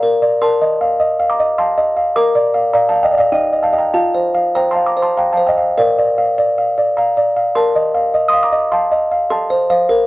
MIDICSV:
0, 0, Header, 1, 2, 480
1, 0, Start_track
1, 0, Tempo, 583658
1, 342, Time_signature, 3, 2, 24, 8
1, 2740, Tempo, 606673
1, 5140, Tempo, 585938
1, 8173, End_track
2, 0, Start_track
2, 0, Title_t, "Music box"
2, 0, Program_c, 0, 10
2, 0, Note_on_c, 0, 74, 41
2, 0, Note_on_c, 0, 77, 60
2, 0, Note_on_c, 0, 82, 77
2, 22, Note_on_c, 0, 70, 45
2, 119, Note_off_c, 0, 74, 0
2, 183, Note_on_c, 0, 74, 45
2, 279, Note_off_c, 0, 70, 0
2, 316, Note_off_c, 0, 77, 0
2, 325, Note_off_c, 0, 82, 0
2, 341, Note_on_c, 0, 70, 55
2, 343, Note_off_c, 0, 74, 0
2, 343, Note_on_c, 0, 84, 88
2, 351, Note_on_c, 0, 81, 69
2, 506, Note_on_c, 0, 75, 52
2, 666, Note_on_c, 0, 77, 53
2, 761, Note_off_c, 0, 75, 0
2, 820, Note_on_c, 0, 75, 52
2, 920, Note_off_c, 0, 77, 0
2, 984, Note_on_c, 0, 77, 50
2, 1034, Note_off_c, 0, 81, 0
2, 1034, Note_off_c, 0, 84, 0
2, 1066, Note_on_c, 0, 86, 89
2, 1072, Note_on_c, 0, 82, 66
2, 1077, Note_off_c, 0, 75, 0
2, 1148, Note_on_c, 0, 75, 46
2, 1238, Note_off_c, 0, 77, 0
2, 1289, Note_off_c, 0, 82, 0
2, 1293, Note_off_c, 0, 86, 0
2, 1301, Note_on_c, 0, 77, 49
2, 1302, Note_on_c, 0, 84, 80
2, 1312, Note_on_c, 0, 81, 65
2, 1399, Note_off_c, 0, 75, 0
2, 1460, Note_on_c, 0, 75, 52
2, 1528, Note_off_c, 0, 81, 0
2, 1530, Note_off_c, 0, 84, 0
2, 1554, Note_off_c, 0, 77, 0
2, 1616, Note_on_c, 0, 77, 42
2, 1713, Note_off_c, 0, 75, 0
2, 1742, Note_off_c, 0, 70, 0
2, 1775, Note_off_c, 0, 77, 0
2, 1775, Note_on_c, 0, 86, 103
2, 1777, Note_on_c, 0, 70, 61
2, 1785, Note_on_c, 0, 82, 76
2, 1934, Note_on_c, 0, 74, 54
2, 2091, Note_on_c, 0, 77, 53
2, 2190, Note_off_c, 0, 74, 0
2, 2225, Note_off_c, 0, 82, 0
2, 2234, Note_off_c, 0, 86, 0
2, 2249, Note_on_c, 0, 82, 98
2, 2250, Note_off_c, 0, 77, 0
2, 2250, Note_on_c, 0, 74, 54
2, 2259, Note_on_c, 0, 77, 72
2, 2369, Note_off_c, 0, 77, 0
2, 2372, Note_off_c, 0, 82, 0
2, 2376, Note_on_c, 0, 81, 83
2, 2385, Note_on_c, 0, 77, 59
2, 2404, Note_off_c, 0, 77, 0
2, 2414, Note_on_c, 0, 77, 50
2, 2492, Note_on_c, 0, 79, 77
2, 2496, Note_off_c, 0, 81, 0
2, 2501, Note_on_c, 0, 75, 59
2, 2509, Note_off_c, 0, 74, 0
2, 2566, Note_on_c, 0, 74, 42
2, 2605, Note_off_c, 0, 77, 0
2, 2612, Note_off_c, 0, 75, 0
2, 2614, Note_off_c, 0, 74, 0
2, 2615, Note_off_c, 0, 79, 0
2, 2615, Note_on_c, 0, 77, 74
2, 2624, Note_on_c, 0, 74, 54
2, 2711, Note_off_c, 0, 70, 0
2, 2731, Note_on_c, 0, 63, 52
2, 2732, Note_on_c, 0, 79, 80
2, 2734, Note_off_c, 0, 74, 0
2, 2738, Note_off_c, 0, 77, 0
2, 2743, Note_on_c, 0, 75, 52
2, 2886, Note_off_c, 0, 75, 0
2, 2896, Note_on_c, 0, 75, 42
2, 2964, Note_off_c, 0, 79, 0
2, 2973, Note_on_c, 0, 81, 76
2, 2981, Note_on_c, 0, 77, 56
2, 3043, Note_off_c, 0, 75, 0
2, 3053, Note_on_c, 0, 75, 38
2, 3058, Note_on_c, 0, 79, 41
2, 3091, Note_off_c, 0, 77, 0
2, 3095, Note_off_c, 0, 81, 0
2, 3098, Note_on_c, 0, 82, 65
2, 3099, Note_off_c, 0, 79, 0
2, 3109, Note_on_c, 0, 79, 50
2, 3200, Note_off_c, 0, 63, 0
2, 3200, Note_off_c, 0, 75, 0
2, 3216, Note_off_c, 0, 79, 0
2, 3219, Note_off_c, 0, 82, 0
2, 3219, Note_on_c, 0, 81, 77
2, 3220, Note_on_c, 0, 65, 52
2, 3229, Note_on_c, 0, 77, 64
2, 3383, Note_on_c, 0, 72, 44
2, 3532, Note_off_c, 0, 77, 0
2, 3541, Note_on_c, 0, 77, 46
2, 3638, Note_off_c, 0, 72, 0
2, 3682, Note_off_c, 0, 81, 0
2, 3706, Note_on_c, 0, 72, 43
2, 3706, Note_on_c, 0, 82, 80
2, 3715, Note_on_c, 0, 79, 58
2, 3798, Note_off_c, 0, 77, 0
2, 3821, Note_off_c, 0, 79, 0
2, 3824, Note_off_c, 0, 82, 0
2, 3831, Note_on_c, 0, 84, 79
2, 3842, Note_on_c, 0, 81, 57
2, 3867, Note_on_c, 0, 77, 42
2, 3945, Note_off_c, 0, 81, 0
2, 3947, Note_off_c, 0, 84, 0
2, 3953, Note_on_c, 0, 86, 64
2, 3960, Note_on_c, 0, 82, 52
2, 3961, Note_off_c, 0, 72, 0
2, 4034, Note_on_c, 0, 72, 35
2, 4064, Note_off_c, 0, 82, 0
2, 4068, Note_off_c, 0, 86, 0
2, 4078, Note_on_c, 0, 84, 69
2, 4086, Note_on_c, 0, 81, 56
2, 4122, Note_off_c, 0, 77, 0
2, 4187, Note_off_c, 0, 81, 0
2, 4190, Note_off_c, 0, 84, 0
2, 4197, Note_on_c, 0, 77, 39
2, 4197, Note_on_c, 0, 82, 67
2, 4207, Note_on_c, 0, 79, 51
2, 4285, Note_off_c, 0, 72, 0
2, 4307, Note_off_c, 0, 79, 0
2, 4310, Note_off_c, 0, 82, 0
2, 4316, Note_off_c, 0, 77, 0
2, 4318, Note_on_c, 0, 81, 66
2, 4325, Note_on_c, 0, 77, 50
2, 4353, Note_on_c, 0, 72, 38
2, 4427, Note_off_c, 0, 77, 0
2, 4430, Note_off_c, 0, 81, 0
2, 4430, Note_on_c, 0, 79, 59
2, 4443, Note_on_c, 0, 75, 48
2, 4513, Note_on_c, 0, 77, 37
2, 4605, Note_off_c, 0, 72, 0
2, 4633, Note_off_c, 0, 65, 0
2, 4657, Note_off_c, 0, 75, 0
2, 4657, Note_off_c, 0, 79, 0
2, 4665, Note_off_c, 0, 77, 0
2, 4674, Note_on_c, 0, 70, 52
2, 4675, Note_on_c, 0, 77, 64
2, 4682, Note_on_c, 0, 74, 50
2, 4829, Note_off_c, 0, 74, 0
2, 4839, Note_on_c, 0, 74, 41
2, 4984, Note_off_c, 0, 77, 0
2, 4993, Note_on_c, 0, 77, 48
2, 5084, Note_off_c, 0, 74, 0
2, 5153, Note_on_c, 0, 74, 48
2, 5243, Note_off_c, 0, 77, 0
2, 5317, Note_on_c, 0, 77, 42
2, 5406, Note_off_c, 0, 74, 0
2, 5478, Note_on_c, 0, 74, 40
2, 5569, Note_off_c, 0, 77, 0
2, 5636, Note_on_c, 0, 82, 76
2, 5646, Note_on_c, 0, 77, 55
2, 5730, Note_off_c, 0, 74, 0
2, 5800, Note_on_c, 0, 74, 42
2, 5949, Note_off_c, 0, 77, 0
2, 5958, Note_on_c, 0, 77, 36
2, 6051, Note_off_c, 0, 74, 0
2, 6081, Note_off_c, 0, 70, 0
2, 6094, Note_off_c, 0, 82, 0
2, 6113, Note_off_c, 0, 77, 0
2, 6113, Note_on_c, 0, 84, 88
2, 6115, Note_on_c, 0, 70, 55
2, 6125, Note_on_c, 0, 81, 71
2, 6278, Note_on_c, 0, 75, 47
2, 6435, Note_on_c, 0, 77, 54
2, 6527, Note_off_c, 0, 75, 0
2, 6595, Note_on_c, 0, 75, 53
2, 6681, Note_off_c, 0, 81, 0
2, 6684, Note_off_c, 0, 84, 0
2, 6685, Note_off_c, 0, 77, 0
2, 6712, Note_on_c, 0, 87, 90
2, 6723, Note_on_c, 0, 84, 67
2, 6751, Note_on_c, 0, 77, 49
2, 6826, Note_off_c, 0, 84, 0
2, 6828, Note_off_c, 0, 87, 0
2, 6831, Note_on_c, 0, 86, 93
2, 6841, Note_on_c, 0, 82, 68
2, 6845, Note_off_c, 0, 75, 0
2, 6909, Note_on_c, 0, 75, 42
2, 7003, Note_off_c, 0, 77, 0
2, 7056, Note_off_c, 0, 82, 0
2, 7058, Note_off_c, 0, 86, 0
2, 7066, Note_on_c, 0, 84, 89
2, 7069, Note_on_c, 0, 77, 46
2, 7079, Note_on_c, 0, 81, 69
2, 7162, Note_off_c, 0, 75, 0
2, 7229, Note_on_c, 0, 75, 51
2, 7295, Note_off_c, 0, 81, 0
2, 7295, Note_off_c, 0, 84, 0
2, 7322, Note_off_c, 0, 77, 0
2, 7393, Note_on_c, 0, 77, 47
2, 7481, Note_off_c, 0, 75, 0
2, 7512, Note_off_c, 0, 70, 0
2, 7547, Note_off_c, 0, 77, 0
2, 7547, Note_on_c, 0, 69, 62
2, 7547, Note_on_c, 0, 84, 104
2, 7557, Note_on_c, 0, 81, 81
2, 7710, Note_on_c, 0, 72, 58
2, 7863, Note_off_c, 0, 72, 0
2, 7871, Note_on_c, 0, 77, 57
2, 7873, Note_on_c, 0, 72, 56
2, 8008, Note_off_c, 0, 69, 0
2, 8010, Note_off_c, 0, 77, 0
2, 8011, Note_off_c, 0, 72, 0
2, 8029, Note_on_c, 0, 70, 71
2, 8173, Note_off_c, 0, 70, 0
2, 8173, Note_off_c, 0, 81, 0
2, 8173, Note_off_c, 0, 84, 0
2, 8173, End_track
0, 0, End_of_file